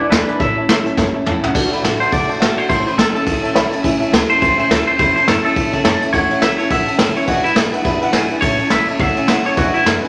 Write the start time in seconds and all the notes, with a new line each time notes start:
0.00 E3 G#3 D4 E4 E5 G#5
0.09 E2 B2 E3 G#3 D4 E4 B4 E5 G#5, snare, closed hi-hat
0.27 E3 G#3 D4 E4 B4 E5 G#5, muted upright bass stroke, closed hi-hat
0.39 A2 E3 A3 C#4 E4 C#5 E5 A5, kick, closed hi-hat
0.56 A3 C#4 E4 C#5 E5 A5, muted upright bass stroke
0.68 G#2 A2 E3 A3 C#4 E4 C#5 E5 A5, snare, closed hi-hat
0.84 A3 C#4 E4 C#5 E5 A5, muted upright bass stroke, closed hi-hat
0.96 F#2 E3 A3 C#4 E4 C#5 E5 A5, kick, snare
1.13 A3 C#4 E4 C#5 E5 A5, muted upright bass stroke
1.25 E2 A2 E3 A3 C#4 E4 C#5 E5 A5, mid tom
1.42 A3 C#4 E4 C#5 E5 F#5, muted upright bass stroke, floor tom
1.53 D2 D3 A3 D4 F#4 D5 F#5 A5, kick, crash
1.71 A3 D4 F#4 D5 F#5 B5, muted upright bass stroke, ride
1.82 A1 D3 A3 D4 F#4 D5 F#5 A5, snare, ride
1.99 A3 D4 F#4 C5 D5 F#5 A5, muted upright bass stroke, ride
2.11 F#1 D3 A3 D4 F#4 D5 F#5 A5, kick, ride
2.28 A3 D4 F#4 C5 D5 F#5 A5, muted upright bass stroke, ride
2.39 G#1 D3 A3 D4 F#4 A4 D5 F#5 A5, snare, ride
2.56 A3 D4 F#4 C5 D5 F#5, muted upright bass stroke, ride
2.67 A1 A2 E3 A3 C#4 E4 C5 C#5 E5 A5, kick, ride
2.85 A3 C#4 E4 C5 C#5 E5 B5, muted upright bass stroke, ride
2.96 B1 E3 A3 C#4 E4 A4 C#5 E5 A5, snare, ride
3.13 A3 C#4 E4 A4 C#5 E5 A5, muted upright bass stroke, ride
3.24 C#2 A2 E3 A3 C#4 E4 C#5 E5 A5, kick, ride
3.41 C#4 E4 C#5 E5 A5, muted upright bass stroke, ride
3.46 A3
3.53 B1 E3 A3 C#4 E4 C#5 E5 B5, snare, ride
3.71 A3 C#4 E4 C#5 E5 A5, muted upright bass stroke, ride
3.82 C#2 A2 E3 A3 C#4 E4 C#5 E5 G#5, kick, ride
3.99 A3 C#4 E4 C#5 E5 A5, muted upright bass stroke, ride
4.11 D2 E3 A3 E4 C#5 E5 A5, snare, ride
4.28 A3 C#4 E4 C5 C#5 E5 A5, muted upright bass stroke, ride
4.40 C#2 A2 E3 A3 C#4 E4 C5 C#5 E5 G#5, kick, ride
4.57 A3 C#4 E4 C5 C#5 E5 G#5, muted upright bass stroke, ride
4.69 D2 E3 A3 C#4 E4 A4 C#5 E5 A5, snare, ride
4.87 A3 C#4 E4 C5 C#5 E5 A5, muted upright bass stroke, ride
4.98 E2 A2 E3 A3 C#4 E4 C5 C#5 E5 B5, kick, ride
5.16 A3 C#4 E4 C5 C#5 E5 A5, muted upright bass stroke, ride
5.27 F#2 E3 A3 C#4 E4 A4 C#5 E5 A5, snare, ride
5.44 A3 C#4 E4 A4 C#5 E5 A5, muted upright bass stroke, ride
5.54 G#2 A2 E3 A3 C#4 E4 C#5 E5 A5, kick, ride
5.72 A3 C#4 E4 C#5 E5 A5, kick, ride
5.84 F#2 E3 A3 C#4 E4 C#5 E5 A5, snare, ride
6.01 A3 C#4 E4 C#5 E5 A5, muted upright bass stroke, ride
6.13 E2 A2 E3 A3 C#4 E4 C#5 E5 F#5, kick, ride
6.30 A3 C#4 E4 C#5 E5 F#5, muted upright bass stroke, ride
6.41 C#2 E3 A3 C#4 E4 C#5 E5, snare, ride
6.58 A3 C#4 E4 C#5 E5 A5, muted upright bass stroke, ride
6.69 A1 A2 E3 A3 C#4 E4 C#5 E5 F#5, kick, ride
6.86 A3 C#4 E4 C#5 E5 A5, muted upright bass stroke, ride
6.98 F#1 E3 A3 C#4 E4 C#5 E5 A5, snare, ride
7.14 A3 C#4 E4 C#5 E5 G#5, muted upright bass stroke, ride
7.25 E1 E2 B2 E3 G#3 D4 E4 F#4 B4 E5 G#5, kick, ride
7.43 E3 G#3 D4 E4 B4 E5 B5, muted upright bass stroke, ride
7.55 G#1 E3 G#3 D4 E4 B4 E5 G#5, snare, ride
7.72 E3 G#3 D4 E4 B4 E5 F#5, muted upright bass stroke, ride
7.84 F#1 E2 B2 E3 G#3 D4 E4 B4 E5 B5, kick, ride
8.01 E3 G#3 D4 E4 B4 E5 F#5, muted upright bass stroke, ride
8.13 G#1 E3 G#3 D4 E4 B4 E5 G#5, snare, ride
8.30 E3 G#3 D4 E4 B4 E5 G#5, muted upright bass stroke, ride
8.41 A1 A2 E3 A3 C#4 E4 C#5 E5 A5, kick, ride
8.59 A3 C#4 E4 C#5 E5 A5, muted upright bass stroke, ride
8.70 B1 E3 A3 C#4 E4 C#5 E5 B5, snare, ride
8.88 A3 C#4 E4 C#5 E5 A5, muted upright bass stroke, ride
8.99 C#2 A2 E3 A3 C#4 E4 C#5 E5 F#5, kick, ride
9.16 A3 C#4 E4 C#5 E5 G#5, muted upright bass stroke, ride
9.28 D2 E3 A3 C#4 E4 C#5 E5 F#5, snare, ride
9.45 A3 C#4 E4 C#5 E5, muted upright bass stroke, ride
9.57 E2 B2 E3 G#3 D4 E4 F#4 B4 E5 G#5, kick, ride
9.74 E3 G#3 D4 E4 B4 E5 F#5, muted upright bass stroke, ride
9.85 F#2 E3 G#3 D4 E4 B4 E5 B5, snare, ride
10.02 E3 G#3 D4 E4 B4 E5 G#5, muted upright bass stroke, ride